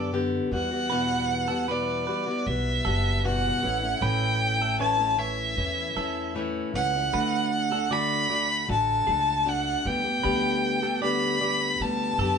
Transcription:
Already playing: upright bass F#2, steel-string acoustic guitar D3 B3 G4, violin D5
0.13 steel-string acoustic guitar D3 B3 G4
0.51 upright bass E2, steel-string acoustic guitar E3 G3 B3 F#4, violin F#5
0.71 steel-string acoustic guitar E3 G3 B3 F#4
0.90 steel-string acoustic guitar E2 B2 E3 G3 B3 F#4, clean electric guitar B4
1.48 steel-string acoustic guitar E3 G3 B3 F#4, clean electric guitar A4
1.68 steel-string acoustic guitar E2 B2 E3 G3 B3 F#4, clean electric guitar B4, violin D5
2.07 steel-string acoustic guitar E3 G3 B3 F#4, clean electric guitar B4
2.26 steel-string acoustic guitar E3 G3 B3 F#4
2.46 upright bass B1, steel-string acoustic guitar E3 G3 B3 F#4, violin E5
2.85 upright bass F#1, steel-string acoustic guitar E3 G3 B3 F#4, clean electric guitar A4
3.24 steel-string acoustic guitar E2 B2 E3 G3 B3 F#4, violin F#5
3.62 upright bass A1, steel-string acoustic guitar E3 A3 C#4 E4
3.82 steel-string acoustic guitar A3 C#4 E4
4.01 upright bass A1, steel-string acoustic guitar A2 E3 A3 C#4 E4, clean electric guitar B4, violin G5
4.59 steel-string acoustic guitar A3 C#4 E4, clean electric guitar A4
4.79 steel-string acoustic guitar A2 E3 A3 C#4 E4, clean electric guitar C#5, violin A5
4.99 steel-string acoustic guitar A3 C#4 E4
5.17 steel-string acoustic guitar E3 A3 C#4 E4, clean electric guitar C#5, violin E5
5.56 upright bass E2, steel-string acoustic guitar E3 A3 C#4 E4
5.95 upright bass E2, steel-string acoustic guitar E3 A3 C#4 E4, clean electric guitar A4
6.35 steel-string acoustic guitar A2 E3 A3 C#4 E4
6.74 upright bass C#2, steel-string acoustic guitar E3 A3 C#4 E4, violin F#5
6.94 steel-string acoustic guitar A3 C#4 E4
7.13 upright bass D2, steel-string acoustic guitar D3 A3 D4 F#4, clean electric guitar B4
7.71 steel-string acoustic guitar A3 D4 F#4, clean electric guitar A4
7.91 steel-string acoustic guitar D3 A3 D4 F#4, clean electric guitar D5, violin B5
8.29 steel-string acoustic guitar D3 A3 D4 F#4, clean electric guitar D5
8.67 upright bass A1, steel-string acoustic guitar D3 A3 D4 F#4, violin A5
9.07 upright bass C#2, steel-string acoustic guitar A3 D4 F#4, clean electric guitar A4
9.46 steel-string acoustic guitar A3 D4 F#4, violin F#5
9.85 upright bass D2, steel-string acoustic guitar D3 G3 B3 G4, violin G5
10.04 steel-string acoustic guitar G3 B3 G4
10.23 upright bass D2, steel-string acoustic guitar D3 G3 B3 G4, clean electric guitar B4
10.82 steel-string acoustic guitar G3 B3 G4, clean electric guitar A4
11.02 steel-string acoustic guitar D3 G3 B3 G4, clean electric guitar D5, violin B5
11.40 steel-string acoustic guitar D3 G3 B3 G4, clean electric guitar D5
11.79 upright bass D2, steel-string acoustic guitar D3 G3 B3 G4, violin A5
12.18 upright bass F#2, steel-string acoustic guitar D3 B3 G4, clean electric guitar A4

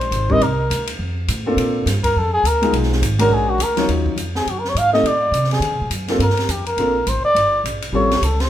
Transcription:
Already playing: upright bass A#1, muted trumpet C5
0.01 ride
0.11 upright bass G#1, hi-hat pedal, ride
0.30 grand piano G3 C4 D4 D#4 A#4, muted trumpet D#5, kick
0.40 upright bass C2, muted trumpet A#4, ride
0.70 upright bass D2, hi-hat pedal, ride
0.87 ride
0.99 upright bass F2
1.28 upright bass A2, hi-hat pedal, ride
1.46 grand piano A#3 C4 D4 F4 A4
1.56 upright bass A#2, ride
1.86 upright bass G2, snare, hi-hat pedal, ride
2.04 muted trumpet A#4, kick, ride
2.16 upright bass F2, muted trumpet A4
2.34 muted trumpet G#4
2.43 upright bass D2, muted trumpet A#4, hi-hat pedal, ride
2.62 grand piano G#3 B3 D#4 F4 G#4, ride
2.72 upright bass B1, ride
2.83 snare
2.92 snare
3.01 upright bass G#1, hi-hat pedal, ride
3.19 grand piano G#3 C#4 D4 F#4 A#4, muted trumpet A#4, ride
3.29 upright bass A#1
3.33 muted trumpet G#4
3.50 muted trumpet F#4
3.58 upright bass D2, hi-hat pedal, ride
3.63 muted trumpet A#4
3.77 grand piano F#3 C#4 D#4 F4 C#5, snare, ride
3.89 upright bass D#2, ride
4.06 kick
4.16 upright bass F2, hi-hat pedal, ride
4.35 muted trumpet G#4, snare
4.46 upright bass F#2, muted trumpet F#4, ride
4.59 muted trumpet A#4
4.65 snare
4.69 muted trumpet C#5
4.75 upright bass G#2, muted trumpet F5, hi-hat pedal, ride
4.93 grand piano A3 C4 D#4 G4 A4, muted trumpet D#5, snare
5.03 upright bass A2, muted trumpet D5, ride
5.31 upright bass C3, hi-hat pedal, ride
5.44 snare
5.51 muted trumpet G#4, snare, ride
5.60 upright bass D3, ride
5.71 upright bass C3
5.81 upright bass A#2
5.90 upright bass F#2, hi-hat pedal, ride
6.08 grand piano A#3 C4 D4 F4 A4, snare, ride
6.19 upright bass G2, muted trumpet A#4, ride
6.30 snare
6.37 snare, ride
6.48 upright bass F2, muted trumpet G4, hi-hat pedal, ride
6.66 muted trumpet A#4, ride
6.77 upright bass A#1, grand piano A#3 C4 D4 F4 A4, ride
7.07 upright bass A1, muted trumpet C5, hi-hat pedal, ride
7.23 muted trumpet D5, muted upright bass stroke
7.34 upright bass G1, ride
7.64 upright bass A#1, hi-hat pedal, ride
7.82 ride
7.92 upright bass A1, grand piano G3 C4 C#4 F4 A4, muted trumpet C#5
8.11 snare, ride
8.21 upright bass C#2, muted trumpet A4, hi-hat pedal, ride
8.40 muted trumpet C5, snare, ride

